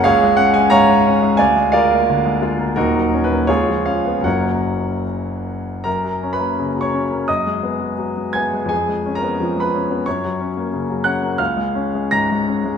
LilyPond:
<<
  \new Staff \with { instrumentName = "Grand piano" } { \time 2/4 \key fis \major \tempo 4 = 86 << { eis''8 fis''16 gis''16 ais''4 | gis''8 eis''4. | \tuplet 3/2 { ais'4 b'8 } cis''8 eis''8 | fis''4 r4 |
\tuplet 3/2 { ais''4 b''8~ b''8 cis'''4 } | dis'''4. gis'''8 | \tuplet 3/2 { gis''4 ais''8~ ais''8 b''4 } | cis'''4. fis'''8 |
eis'''4 ais'''4 | } \\ { <gis' cis''>8 r8 <cis'' eis''>4 | <d'' eis''>8 <ais' d''>4. | <dis' fis'>8 r8 <eis' gis'>8 r8 | <ais' cis''>4 r4 |
\tuplet 3/2 { ais'4 b'8~ b'8 cis''4 } | dis''4. gis''8 | \tuplet 3/2 { gis'4 ais'8~ ais'8 b'4 } | cis''4. fis''8 |
eis''4 ais''4 | } >> }
  \new Staff \with { instrumentName = "Grand piano" } { \clef bass \time 2/4 \key fis \major cis,16 gis16 cis'16 gis16 gis,16 gis16 cis'16 gis16 | d,16 gis16 eis'16 ais16 d16 gis16 eis'16 ais16 | <dis,, dis,>16 fis16 cis'16 ais16 cis,16 eis16 cis'16 b16 | <fis,, fis, fis ais cis'>2 |
fis,16 fis16 cis'16 ais16 cis16 fis16 cis'16 ais16 | fis,16 gis16 b16 gis16 fis16 gis16 b16 gis16 | eis,16 gis16 cis'16 b16 eis16 gis16 cis'16 b16 | fis,16 fis16 cis'16 ais16 cis16 fis16 cis'16 ais16 |
cis,16 gis16 cis'16 gis16 gis,16 gis16 cis'16 gis16 | }
>>